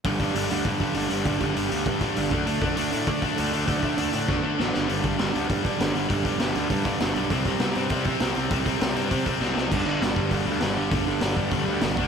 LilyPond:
<<
  \new Staff \with { instrumentName = "Distorted electric guitar" } { \clef bass \time 4/4 \key d \mixolydian \tempo 4 = 199 <g, d g>8 <g, d g>8 <g, d g>8 <g, d g>8 <g, d g>8 <g, d g>8 <g, d g>8 <g, d g>8 | <g, d g>8 <g, d g>8 <g, d g>8 <g, d g>8 <g, d g>8 <g, d g>8 <g, d g>8 <d a d'>8 | <d a d'>8 <d a d'>8 <d a d'>8 <d a d'>8 <d a d'>8 <d a d'>8 <d a d'>8 <d a d'>8 | <d a d'>8 <d a d'>8 <d a d'>8 <d a d'>8 <d a d'>8 <d a d'>8 <d a d'>8 <g, d g>8 |
<g, d g>8 <g, d g>8 <g, d g>8 <g, d g>8 <g, d g>8 <g, d g>8 <g, d g>8 <g, d g>8 | <g, d g>8 <g, d g>8 <g, d g>8 <g, d g>8 <g, d g>8 <g, d g>8 <g, d g>8 <g, d g>8 | <c g c'>8 <c g c'>8 <c g c'>8 <c g c'>8 <c g c'>8 <c g c'>8 <c g c'>8 <c g c'>8 | <c g c'>8 <c g c'>8 <c g c'>8 <c g c'>8 <c g c'>8 <c g c'>8 <c g c'>8 <c g c'>8 |
<g, d g>8 <g, d g>8 <g, d g>8 <g, d g>8 <g, d g>8 <g, d g>8 <g, d g>8 <g, d g>8 | <g, d g>8 <g, d g>8 <g, d g>8 <g, d g>8 <g, d g>8 <g, d g>8 <g, d g>8 <d a d'>8 | }
  \new Staff \with { instrumentName = "Overdriven electric guitar" } { \clef bass \time 4/4 \key d \mixolydian <g, d g>8 <g, d g>8 <g, d g>8 <g, d g>8 <g, d g>8 <g, d g>8 <g, d g>8 <g, d g>8 | <g, d g>8 <g, d g>8 <g, d g>8 <g, d g>8 <g, d g>8 <g, d g>8 <g, d g>8 <d a d'>8 | <d a d'>8 <d a d'>8 <d a d'>8 <d a d'>8 <d a d'>8 <d a d'>8 <d a d'>8 <d a d'>8 | <d a d'>8 <d a d'>8 <d a d'>8 <d a d'>8 <d a d'>8 <d a d'>8 <d a d'>8 <g, d g>8 |
<g, d g>8 <g, d g>8 <g, d g>8 <g, d g>8 <g, d g>8 <g, d g>8 <g, d g>8 <g, d g>8 | <g, d g>8 <g, d g>8 <g, d g>8 <g, d g>8 <g, d g>8 <g, d g>8 <g, d g>8 <g, d g>8 | <c g c'>8 <c g c'>8 <c g c'>8 <c g c'>8 <c g c'>8 <c g c'>8 <c g c'>8 <c g c'>8 | <c g c'>8 <c g c'>8 <c g c'>8 <c g c'>8 <c g c'>8 <c g c'>8 <c g c'>8 <c g c'>8 |
<g, d g>8 <g, d g>8 <g, d g>8 <g, d g>8 <g, d g>8 <g, d g>8 <g, d g>8 <g, d g>8 | <g, d g>8 <g, d g>8 <g, d g>8 <g, d g>8 <g, d g>8 <g, d g>8 <g, d g>8 <d a d'>8 | }
  \new Staff \with { instrumentName = "Picked electric bass" } { \clef bass \time 4/4 \key d \mixolydian g,,8 g,,8 g,,8 d,8 g,4 g,,8 g,,8 | g,,8 g,,8 g,,8 d,8 g,4 g,,8 d,8 | d,8 d,8 d,8 a,8 d4 d,8 d,8 | d,8 d,8 d,8 a,8 d4 a,,8 g,,8 |
g,,8 g,,8 g,,8 d,8 g,4 g,,8 g,,8 | g,,8 g,,8 g,,8 d,8 g,4 g,,8 b,,8 | c,8 c,8 c,8 g,8 c4 c,8 c,8 | c,8 c,8 c,8 g,8 c4 c,8 c,8 |
g,,8 g,,8 g,,8 g,,8 g,,8 d,8 g,,8 g,,8 | g,,8 g,,8 g,,8 g,,8 g,,8 d,8 g,,8 d,8 | }
  \new DrumStaff \with { instrumentName = "Drums" } \drummode { \time 4/4 <hho bd>8 <hho bd>8 hho8 hho8 <hho bd>8 <hho bd>8 hho8 hho8 | <hho bd>8 <hho bd>8 hho8 hho8 <hho bd>8 <hho bd>8 hho8 <hho bd>8 | hho8 <hho bd>8 hho8 hho8 <hho bd>8 <hho bd>8 hho8 hho8 | <hho bd>8 <hho bd>8 hho8 hho8 <bd sn>4 sn8 sn8 |
hho8 <hho bd>8 <hho sn>8 hho8 <hho bd>8 <hho bd>8 <hho sn>8 hho8 | <hho bd>8 <hho bd>8 <hho sn>8 hho8 <hho bd>8 <hho bd>8 <hho sn>8 hho8 | <hho bd>8 <hho bd>8 <hho sn>8 hho8 <hho bd>8 <hho bd>8 <hho sn>8 hho8 | <hho bd>8 <hho bd>8 <hho sn>8 hho8 <hho bd>8 <hho bd>8 sn8 sn8 |
<cymc bd>4 <hho sn>8 bd8 <hho bd>4 <hho sn>4 | <hho bd>4 <hho sn>8 bd8 <hho bd>4 <hho sn>8 bd8 | }
>>